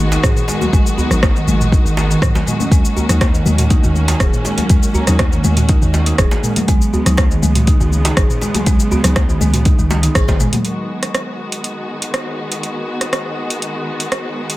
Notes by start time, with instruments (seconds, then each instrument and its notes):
Already playing: 808-style bass G#1, string section D#3 G#3 B3 F#4
0.12 marimba D#4, djembe slap, cabasa
0.23 808-style bass G#2, marimba G#4, kick, cross-stick, djembe tone, cabasa
0.36 mid tom, cabasa
0.48 marimba G#3, djembe slap, cabasa
0.61 marimba F#3, high conga, djembe tone, cabasa
0.73 808-style bass G#1, marimba G#3, kick, cabasa
0.87 cabasa
0.98 marimba B3, djembe bass, cabasa
1.11 808-style bass G#1, marimba D#4, cross-stick, low conga, cabasa
1.23 kick, cross-stick, djembe slap, high conga, cabasa
1.36 marimba D#3, cabasa
1.47 808-style bass G#1, marimba G#3, high conga, low conga, cabasa
1.61 mid tom, djembe tone, cabasa
1.72 marimba D#4, kick, cabasa
1.85 808-style bass G#1, marimba D#3, cabasa
1.97 djembe slap, high conga, cabasa
2.10 marimba D#3, cabasa
2.22 808-style bass G#2, marimba F#3, kick, cross-stick, cabasa
2.35 djembe slap, djembe tone, high conga, cabasa
2.47 marimba G#3, mid tom, cabasa
2.60 marimba C#4, high conga, cabasa
2.71 808-style bass D#2, marimba G#3, string section A#3 C#4, kick, closed hi-hat, cabasa
2.85 cabasa
2.96 marimba A#3, djembe bass, cabasa
3.09 808-style bass D#2, marimba D#4, cross-stick, closed hi-hat, low conga, cabasa
3.21 kick, cross-stick, closed hi-hat, djembe slap, high conga, cabasa
3.34 marimba D#3, cabasa
3.45 808-style bass D#2, marimba G#3, high conga, low conga, cabasa
3.58 closed hi-hat, mid tom, djembe tone, cabasa
3.70 marimba D#4, kick, closed hi-hat, high conga, cabasa
3.83 808-style bass D#2, marimba D#3, djembe tone, cabasa
3.96 high conga, cabasa
4.08 marimba D#4, closed hi-hat, djembe slap, cabasa
4.20 808-style bass D#1, marimba G#4, kick, cross-stick, closed hi-hat, djembe tone, cabasa
4.33 mid tom, cabasa
4.45 marimba G#3, djembe slap, cabasa
4.58 marimba F#3, closed hi-hat, djembe tone, high conga, cabasa
4.69 808-style bass D#2, marimba G#3, kick, closed hi-hat, cabasa
4.83 cabasa
4.94 marimba A#3, djembe bass, cabasa
5.07 808-style bass D#2, marimba D#4, cross-stick, closed hi-hat, low conga, cabasa
5.19 kick, cross-stick, closed hi-hat, djembe slap, high conga, cabasa
5.32 marimba D#3, cabasa
5.44 808-style bass D#2, marimba G#3, high conga, cabasa
5.57 closed hi-hat, mid tom, djembe tone, cabasa
5.69 marimba D#4, kick, closed hi-hat, cabasa
5.82 808-style bass D#2, marimba D#3, cabasa
5.94 djembe slap, high conga, cabasa
6.06 marimba D#4, closed hi-hat, cabasa
6.18 808-style bass D#1, marimba G#4, kick, cross-stick, closed hi-hat, cabasa
6.31 djembe slap, djembe tone, high conga, cabasa
6.43 marimba G#3, mid tom, cabasa
6.56 marimba F#3, closed hi-hat, high conga, cabasa
6.68 808-style bass C#2, string section C#3 G#3 B3, marimba G#3, kick, closed hi-hat, cabasa
6.82 cabasa
6.93 marimba B3, djembe bass, cabasa
7.06 808-style bass C#2, marimba D#4, cross-stick, closed hi-hat, low conga, cabasa
7.17 kick, cross-stick, closed hi-hat, djembe slap, high conga, cabasa
7.31 marimba D#3, cabasa
7.43 808-style bass C#2, marimba G#3, high conga, low conga, cabasa
7.55 closed hi-hat, mid tom, djembe tone, cabasa
7.67 marimba D#4, kick, closed hi-hat, high conga, cabasa
7.80 808-style bass C#2, marimba D#3, djembe tone, cabasa
7.92 high conga, cabasa
8.05 marimba D#4, closed hi-hat, djembe slap, cabasa
8.17 808-style bass G#1, marimba G#4, kick, cross-stick, closed hi-hat, djembe tone, cabasa
8.30 mid tom, cabasa
8.41 marimba G#3, djembe slap, cabasa
8.54 marimba F#3, closed hi-hat, high conga, djembe tone, cabasa
8.66 808-style bass C#2, marimba G#3, kick, closed hi-hat, cabasa
8.80 cabasa
8.92 marimba B3, djembe bass, cabasa
9.04 808-style bass C#2, marimba D#4, cross-stick, closed hi-hat, low conga, cabasa
9.16 kick, cross-stick, closed hi-hat, djembe slap, high conga, cabasa
9.29 marimba D#3, djembe tone, cabasa
9.41 808-style bass C#2, marimba G#3, high conga, low conga, cabasa
9.54 closed hi-hat, mid tom, djembe tone, cabasa
9.65 marimba D#4, kick, closed hi-hat, high tom, cabasa
9.78 808-style bass C#2, marimba D#3, high tom, cabasa
9.90 high tom, djembe slap, high conga, cabasa
10.03 marimba D#4, closed hi-hat, mid tom, cabasa
10.15 808-style bass G#1, marimba G#4, kick, cross-stick, closed hi-hat, mid tom, cabasa
10.28 kick, mid tom, djembe slap, high conga, djembe tone, cabasa
10.40 marimba G#3, mid tom, high conga, cabasa
10.53 marimba F#3, closed hi-hat, mid tom, high conga, cabasa
10.65 string section D#3 G#3 B3 F#4, closed hi-hat
11.03 cross-stick, closed hi-hat
11.14 cross-stick, closed hi-hat
11.52 closed hi-hat
11.64 closed hi-hat
12.02 closed hi-hat
12.14 cross-stick, closed hi-hat
12.52 closed hi-hat
12.63 closed hi-hat
13.01 cross-stick, closed hi-hat
13.13 cross-stick, closed hi-hat
13.50 closed hi-hat
13.62 closed hi-hat
14.00 closed hi-hat
14.12 cross-stick, closed hi-hat
14.50 closed hi-hat